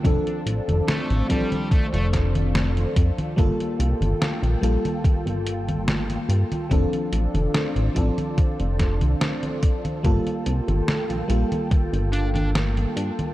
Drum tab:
HH |xxxxxxxxxxxxxxxx|xxxxxxxxxxxxxxxx|xxxxxxxxxxxxxxxx|xxxxxxxxxxxxxxxx|
SD |----o-----o-o---|----o-------o---|----o-----o-o---|----o-------o---|
CG |oo-ooo-ooo-ooo-o|oo-ooo-ooo-ooo-o|oo-ooo-ooo-ooo-o|oo-ooo-ooo-ooo-o|
BD |o-----o-o-o---o-|o-------o-------|o-----o-o-o---o-|o-------o-------|